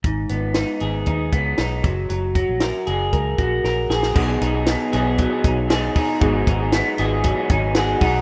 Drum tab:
CC |----------------|----------------|x---------------|----------------|
HH |x-x-x-x-x-x-x-x-|x-x-x-x-x-x-----|--x-x-x-x-x-x-o-|x-x-x-x-x-x-x-o-|
SD |----o-------o---|----o-------o-oo|----o-------o---|----o-------o---|
BD |o-------o-o---o-|--o-----o-o-----|o-------o-o---o-|o-o-----o-o---o-|